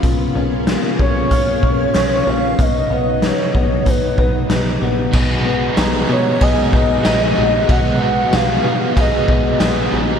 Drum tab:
CC |--------|--------|x-------|--------|
RD |--------|--------|--x-x-x-|x-x-x-x-|
HH |x-x-x-x-|x-x-x-x-|--------|--------|
TB |--------|--------|--x---x-|--x---x-|
SD |--o---o-|--o---o-|--o---o-|--o---o-|
BD |o--ooo--|o--ooo--|o---oo--|o---oo--|